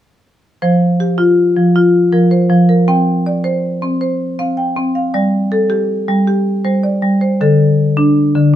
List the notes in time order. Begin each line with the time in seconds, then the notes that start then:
0.62 F3 C5
1.00 G4
1.18 F4
1.56 F3
1.76 F4
2.12 F3 A#4
2.31 C5
2.50 F3
2.69 A#4
2.88 C4 G5
3.26 D5
3.44 C5
3.82 C4
4.01 C5
4.39 C4 F5
4.57 G5
4.76 C4
4.95 F5
5.14 G3 D5
5.52 A4
5.70 G4
6.08 G3
6.27 G4
6.65 G3 C5
6.83 D5
7.02 G3
7.21 C5
7.41 D3 A4
7.97 D4
8.35 D3